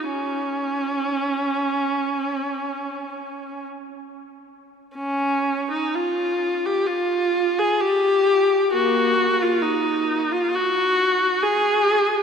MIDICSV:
0, 0, Header, 1, 2, 480
1, 0, Start_track
1, 0, Tempo, 1224490
1, 13, Time_signature, 4, 2, 24, 8
1, 972, Tempo, 1171875
1, 1452, Tempo, 1310044
1, 1932, Tempo, 974026
1, 2412, Tempo, 925926
1, 3852, Tempo, 895522
1, 5735, End_track
2, 0, Start_track
2, 0, Title_t, "Viola"
2, 0, Program_c, 0, 41
2, 15, Note_on_c, 0, 61, 53
2, 1453, Note_off_c, 0, 61, 0
2, 1932, Note_on_c, 0, 61, 56
2, 2274, Note_off_c, 0, 61, 0
2, 2300, Note_on_c, 0, 63, 50
2, 2414, Note_off_c, 0, 63, 0
2, 2420, Note_on_c, 0, 65, 51
2, 2781, Note_off_c, 0, 65, 0
2, 2785, Note_on_c, 0, 67, 53
2, 2897, Note_on_c, 0, 65, 59
2, 2900, Note_off_c, 0, 67, 0
2, 3256, Note_off_c, 0, 65, 0
2, 3267, Note_on_c, 0, 68, 54
2, 3382, Note_off_c, 0, 68, 0
2, 3382, Note_on_c, 0, 67, 63
2, 3855, Note_off_c, 0, 67, 0
2, 3861, Note_on_c, 0, 66, 63
2, 3862, Note_on_c, 0, 58, 49
2, 4200, Note_off_c, 0, 58, 0
2, 4214, Note_off_c, 0, 66, 0
2, 4229, Note_on_c, 0, 65, 56
2, 4336, Note_on_c, 0, 63, 54
2, 4343, Note_off_c, 0, 65, 0
2, 4701, Note_off_c, 0, 63, 0
2, 4711, Note_on_c, 0, 65, 57
2, 4827, Note_off_c, 0, 65, 0
2, 4834, Note_on_c, 0, 66, 69
2, 5304, Note_on_c, 0, 68, 69
2, 5305, Note_off_c, 0, 66, 0
2, 5735, Note_off_c, 0, 68, 0
2, 5735, End_track
0, 0, End_of_file